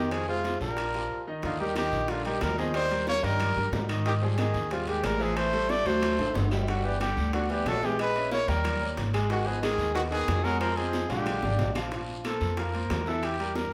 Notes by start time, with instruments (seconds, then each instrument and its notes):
Already playing: upright bass F2, tenor saxophone D#3, grand piano D#3 D#4 D#5, trumpet G4
0.11 tenor saxophone F3, trumpet G#4, high bongo, high timbale, long guiro, claves
0.27 tenor saxophone C3, grand piano G#3 G#4 C5, trumpet F4, high conga
0.44 high bongo, high conga, high timbale, short guiro
0.60 upright bass A#1, grand piano F3 F4 C5, tenor saxophone G3, trumpet A#4, high bongo, high conga, short guiro
0.77 high bongo, high conga, high timbale, long guiro, claves
0.94 grand piano F3 F4 G4, high bongo, high conga, high timbale
1.27 grand piano D#3 D#4 D#5
1.42 upright bass D#2, tenor saxophone D3, grand piano D#3 D#4 D#5, trumpet F4, high bongo, high conga, high timbale, long guiro
1.60 tenor saxophone D#3, grand piano G3 G4 A#4, trumpet G4, high conga
1.75 grand piano D#3 D#4 D#5, tenor saxophone D#3, trumpet G4, high bongo, high conga, high timbale, short guiro, claves
1.92 upright bass A#1, high bongo, high conga, short guiro
2.08 tenor saxophone D3, grand piano G3 G4 A#4, trumpet F4, high bongo, high conga, high timbale, long guiro
2.25 tenor saxophone D#3, grand piano G3 G4 A#4, trumpet G4, high bongo, high conga, high timbale
2.41 upright bass D#2, tenor saxophone G3, trumpet A#4, high bongo, low bongo, high conga, high timbale, low timbale, short guiro, claves
2.58 grand piano D#3 D#4 D#5, tenor saxophone F3, trumpet G#4, high bongo, high conga, short guiro
2.74 tenor saxophone G3, trumpet C5, high bongo, high timbale, long guiro, claves
2.91 grand piano G3 G4 A#4, high bongo, high conga, high timbale
3.07 tenor saxophone A#3, trumpet C#5, high bongo, high conga, short guiro
3.23 upright bass G2, grand piano D#3 D#4 D#5, tenor saxophone G3, trumpet A#4, high bongo, high conga, high timbale, short guiro
3.40 high bongo, high conga, low conga, high timbale, long guiro, claves
3.56 upright bass G2, grand piano G3 G4 A#4, high bongo, high conga, low conga
3.72 upright bass G#2, high bongo, low bongo, high conga, high timbale, low timbale, short guiro
3.89 grand piano D#3 D#4 D#5, high conga, high timbale, short guiro, claves
4.05 grand piano D#3 D#4 D#5, tenor saxophone D#3, trumpet G4, high bongo, high conga, high timbale, long guiro
4.21 tenor saxophone F3, grand piano G3 G4 G#4, trumpet G#4, high conga
4.38 tenor saxophone D#3, grand piano D#3 D#4 D#5, trumpet G#4, high bongo, high conga, high timbale, short guiro, claves
4.54 upright bass D#2, high bongo, high conga, short guiro
4.71 tenor saxophone C3, grand piano G3 G4 G#4, trumpet F4, high bongo, high conga, high timbale, long guiro
4.87 tenor saxophone D#3, grand piano G#3 G4 G#4, trumpet G4, high bongo, high conga, high timbale
5.03 upright bass A1, tenor saxophone G3, trumpet A#4, high bongo, low bongo, high conga, high timbale, short guiro, claves
5.19 grand piano E3 E4 E5, tenor saxophone F3, trumpet G#4, high bongo, short guiro
5.36 tenor saxophone A3, trumpet C5, high bongo, high conga, high timbale, long guiro, claves
5.53 grand piano G3 G4 A4, high bongo, high conga, high timbale
5.69 tenor saxophone A3, trumpet D5, high bongo, high conga, short guiro
5.85 upright bass D2, grand piano F#3 F#4 F#5, tenor saxophone A3, trumpet C5, high bongo, high conga, high timbale, short guiro
6.01 high bongo, high conga, low conga, high timbale, long guiro, claves
6.18 upright bass A1, grand piano A3 A4 C5, high bongo, high conga, high timbale
6.34 upright bass G1, high bongo, low bongo, high conga, high timbale, short guiro
6.51 grand piano G3 G4 G5, high conga, low timbale, short guiro, claves
6.67 tenor saxophone D3, grand piano G3 G4 G5, trumpet F#4, high bongo, high conga, high timbale, long guiro
6.84 tenor saxophone E3, grand piano B3 B4 D5, trumpet G4, high conga
7.00 tenor saxophone D3, grand piano G3 G4 G5, trumpet G4, high bongo, high conga, high timbale, short guiro, claves
7.17 upright bass D2, high bongo, high conga, short guiro
7.33 tenor saxophone D3, grand piano B3 B4 D5, trumpet F#4, high bongo, high conga, high timbale, long guiro
7.49 tenor saxophone E3, grand piano B3 B4 D5, trumpet G4, high bongo, high conga, high timbale
7.65 upright bass A#1, tenor saxophone F#3, trumpet A4, high bongo, low bongo, high conga, high timbale, low timbale, short guiro, claves
7.82 tenor saxophone E3, grand piano G#3 G#4 G#5, trumpet G4, high bongo, high conga, short guiro
7.99 tenor saxophone G#3, trumpet B4, high bongo, high timbale, long guiro, claves
8.14 grand piano C#4 C#5 E5, high bongo, high conga, high timbale
8.31 tenor saxophone A#3, trumpet C#5, high bongo, high conga, short guiro
8.48 upright bass D#2, grand piano G3 G4 G5, tenor saxophone G3, trumpet A#4, high bongo, high conga, high timbale, short guiro
8.64 high bongo, high conga, low conga, high timbale, long guiro, claves
8.81 grand piano A#3 A#4 C#5, high bongo
8.97 upright bass G#1, high bongo, low bongo, high conga, high timbale, short guiro
9.13 grand piano G#3 G#4 G#5, high conga, high timbale, short guiro, claves
9.30 tenor saxophone D#3, grand piano G#3 G#4 G#5, trumpet F#4, high bongo, high conga, high timbale, long guiro
9.46 tenor saxophone F3, grand piano B3 B4 D#5, trumpet G#4, high conga
9.62 tenor saxophone D#3, grand piano G#3 G#4 G#5, trumpet G#4, high bongo, high conga, high timbale, short guiro, claves
9.78 upright bass D#2, high bongo, high conga, short guiro
9.94 tenor saxophone D#3, grand piano B3 B4 D#5, trumpet F#4, high bongo, high conga, high timbale, long guiro
10.10 tenor saxophone D#3, grand piano B3 B4 D#5, trumpet G#4, high bongo, high conga, high timbale
10.28 upright bass F2, high bongo, low bongo, high conga, high timbale, low timbale, short guiro, claves
10.43 tenor saxophone F#3, grand piano G#3 G#4 G#5, trumpet A#4, high bongo, high conga, short guiro
10.60 tenor saxophone F3, trumpet A#4, high bongo, high timbale, long guiro, claves
10.76 tenor saxophone F3, grand piano C4 C5 D#5, trumpet G#4, high bongo, high conga, high timbale
10.93 high bongo, high conga, short guiro
11.08 upright bass A#1, tenor saxophone D3, grand piano G#3 F4 F5, trumpet G4, high bongo, high conga, high timbale, short guiro
11.26 high bongo, high conga, low conga, high timbale, long guiro, claves
11.43 upright bass G#1, grand piano D4 D5 F5, low bongo, high conga, low conga
11.59 upright bass A#1, low bongo, high timbale, low timbale, short guiro
11.75 grand piano F3 F4 F5, low bongo, high conga, high timbale, short guiro, claves
11.91 grand piano F3 F4 F5, high bongo, high conga, high timbale, long guiro
12.09 high conga
12.24 grand piano A#3 A4 C5, trumpet A4, high bongo, high conga, high timbale, short guiro, claves
12.40 upright bass F2, high bongo, high conga, short guiro
12.57 grand piano F3 F4 F5, trumpet A#4, high bongo, high conga, high timbale, long guiro
12.74 grand piano A#3 A#4 C5, high bongo, high conga, high timbale
12.90 upright bass E2, high bongo, low bongo, high conga, high timbale, low timbale, short guiro, claves
13.06 grand piano E3 E4 E5, trumpet A4, high bongo, high conga, short guiro
13.23 trumpet G4, high bongo, high timbale, long guiro, claves
13.39 grand piano G3 G4 A#4, high bongo, high conga, high timbale
13.55 trumpet A#4, high bongo, high conga, short guiro